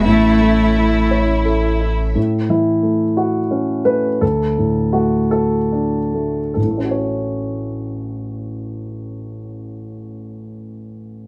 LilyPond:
<<
  \new Staff \with { instrumentName = "String section" } { \time 6/8 \key a \major \tempo 4. = 52 <cis' e' e''>2. | r2. | r2. | r2. |
r2. | }
  \new Staff \with { instrumentName = "Viola" } { \time 6/8 \key a \major e'2~ e'8 r8 | r2. | r2. | r2. |
r2. | }
  \new Staff \with { instrumentName = "Grand piano" } { \time 6/8 \key a \major r2. | r8 e'4 fis'4 b'8 | a'4 fis'8 a'4. | <a,, a, a cis' fis' a' cis''>2.~ |
<a,, a, a cis' fis' a' cis''>2. | }
  \new Staff \with { instrumentName = "Grand piano" } { \time 6/8 \key a \major a,8 a8 e'8 cis''8 a'8 e'8 | a,8 e8 a4 cis'8 a8 | d,8 a,8 a8 fis'8 d'8 a8 | r2. |
r2. | }
  \new Staff \with { instrumentName = "Cello" } { \time 6/8 \key a \major a4. r4. | r2. | r2. | r2. |
r2. | }
  \new Staff \with { instrumentName = "Sub bass" } { \clef bass \time 6/8 \key a \major a,,2. | r2. | r2. | r2. |
r2. | }
>>